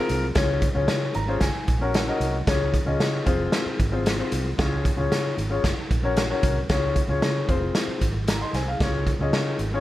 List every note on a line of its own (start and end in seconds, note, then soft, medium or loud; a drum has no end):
0.00 0.23 C4 medium
0.00 0.23 F4 medium
0.00 0.23 G#4 medium
0.00 0.24 A#4 medium
0.09 0.30 C2 medium
0.09 closed hi-hat medium
0.35 0.67 C#2 medium
0.35 0.62 C#4 medium
0.35 0.63 F4 medium
0.35 0.63 G#4 medium
0.35 0.63 C#5 medium
0.35 kick loud
0.35 snare loud
0.35 closed hi-hat medium
0.62 kick medium
0.62 closed hi-hat medium
0.74 0.86 C#2 medium
0.74 1.11 C#4 medium
0.74 1.11 F4 medium
0.74 1.11 G#4 medium
0.74 1.12 C#5 medium
0.88 1.10 C#3 medium
0.88 snare loud
0.88 closed hi-hat medium
1.14 1.36 G#1 medium
1.14 1.40 A#5 medium
1.14 closed hi-hat medium
1.28 1.41 C#4 medium
1.28 1.42 F4 medium
1.28 1.42 G#4 medium
1.28 1.42 C5 medium
1.41 1.52 F#1 loud
1.41 1.91 G#5 medium
1.41 kick medium
1.41 snare medium
1.41 closed hi-hat medium
1.54 muted fingered electric bass stroke soft
1.68 2.10 A#1 medium
1.68 kick medium
1.68 closed hi-hat medium
1.81 1.99 C#4 medium
1.81 1.99 F#4 medium
1.81 2.00 A#4 medium
1.81 2.00 C#5 medium
1.94 2.44 F#5 medium
1.94 snare loud
1.94 closed hi-hat medium
2.07 2.34 C#4 medium
2.07 2.35 F#4 medium
2.07 2.35 A#4 medium
2.07 2.35 D#5 medium
2.20 2.41 C2 medium
2.20 closed hi-hat medium
2.47 2.78 C#2 medium
2.47 2.74 C#4 medium
2.47 2.74 F4 medium
2.47 2.74 G#4 medium
2.47 2.75 C#5 medium
2.47 kick loud
2.47 snare loud
2.47 closed hi-hat medium
2.74 kick medium
2.74 closed hi-hat medium
2.86 2.97 C#2 medium
2.86 3.22 C#4 medium
2.86 3.22 F4 medium
2.86 3.23 G#4 medium
2.86 3.23 D#5 medium
3.00 3.21 C#3 medium
3.00 snare loud
3.00 closed hi-hat medium
3.26 3.47 F1 medium
3.26 3.79 C4 medium
3.26 3.79 F4 medium
3.26 3.79 G#4 medium
3.26 3.80 C5 medium
3.26 kick medium
3.26 closed hi-hat medium
3.52 snare medium
3.52 closed hi-hat medium
3.66 muted fingered electric bass stroke soft
3.80 4.21 G#1 medium
3.80 kick medium
3.80 closed hi-hat medium
3.92 4.10 C4 medium
3.92 4.10 F4 medium
3.92 4.11 G#4 medium
3.92 4.11 C5 medium
4.06 snare loud
4.06 closed hi-hat medium
4.18 4.45 C4 medium
4.18 4.46 F4 medium
4.18 4.46 G#4 medium
4.18 4.46 C5 medium
4.32 4.53 C2 medium
4.32 closed hi-hat medium
4.58 4.90 C#2 medium
4.58 4.85 C#4 medium
4.58 4.85 F4 medium
4.58 4.86 G#4 medium
4.58 4.86 C#5 medium
4.58 kick loud
4.58 snare loud
4.58 closed hi-hat medium
4.85 kick medium
4.85 closed hi-hat medium
4.97 5.08 C#2 medium
4.97 5.33 C#4 medium
4.97 5.33 F4 medium
4.97 5.34 G#4 medium
4.97 5.34 C#5 medium
5.12 5.32 C#3 medium
5.12 snare medium
5.12 closed hi-hat medium
5.38 5.58 G#1 medium
5.38 closed hi-hat medium
5.50 5.64 C#4 medium
5.50 5.64 F4 medium
5.50 5.64 G#4 medium
5.50 5.64 C#5 medium
5.64 5.74 F#1 medium
5.64 kick medium
5.64 snare medium
5.64 closed hi-hat medium
5.78 muted fingered electric bass stroke soft
5.91 6.32 A#1 medium
5.91 kick medium
5.91 closed hi-hat medium
6.03 6.21 C#4 medium
6.03 6.22 F#4 medium
6.03 6.22 A#4 medium
6.03 6.22 C#5 medium
6.17 snare medium
6.17 closed hi-hat medium
6.29 6.56 C#4 medium
6.29 6.57 F#4 medium
6.29 6.57 A#4 medium
6.29 6.57 C#5 medium
6.43 6.64 C2 medium
6.43 kick medium
6.43 closed hi-hat medium
6.69 7.00 C#2 medium
6.69 6.96 C#4 medium
6.69 6.97 F4 medium
6.69 6.97 G#4 medium
6.69 6.97 C#5 medium
6.69 kick loud
6.69 snare loud
6.69 closed hi-hat medium
6.96 kick medium
6.96 closed hi-hat medium
7.08 7.19 C#2 medium
7.08 7.45 C#4 medium
7.08 7.45 F4 medium
7.08 7.45 G#4 medium
7.08 7.45 C#5 medium
7.22 7.43 C#3 medium
7.22 snare loud
7.22 closed hi-hat medium
7.48 7.69 F1 medium
7.48 8.01 C4 medium
7.48 8.01 F4 medium
7.48 8.02 G#4 medium
7.48 8.02 C5 loud
7.48 kick medium
7.48 closed hi-hat medium
7.75 snare medium
7.75 closed hi-hat medium
7.88 muted fingered electric bass stroke soft
8.01 8.43 G#1 medium
8.01 kick medium
8.01 closed hi-hat medium
8.28 8.41 A#5 medium
8.28 snare medium
8.28 closed hi-hat loud
8.41 8.54 D#5 medium
8.41 8.54 C6 medium
8.53 8.74 C2 medium
8.53 8.67 C5 medium
8.53 8.67 G#5 medium
8.53 snare soft
8.53 closed hi-hat medium
8.68 8.80 G#4 soft
8.68 8.93 F5 medium
8.80 9.12 C#2 medium
8.80 9.07 C#4 medium
8.80 9.08 F4 medium
8.80 9.08 G#4 medium
8.80 9.08 C#5 medium
8.80 kick loud
8.80 snare loud
8.80 closed hi-hat medium
9.07 kick medium
9.07 closed hi-hat medium
9.19 9.30 C#2 medium
9.19 9.56 C#4 medium
9.19 9.56 F4 medium
9.19 9.57 G#4 medium
9.19 9.57 D#5 medium
9.33 9.54 C#3 medium
9.33 snare loud
9.33 closed hi-hat medium
9.59 9.80 G#1 medium
9.59 closed hi-hat medium
9.74 9.80 C#4 medium
9.74 9.80 F4 medium
9.74 9.80 G#4 medium
9.74 9.80 C#5 medium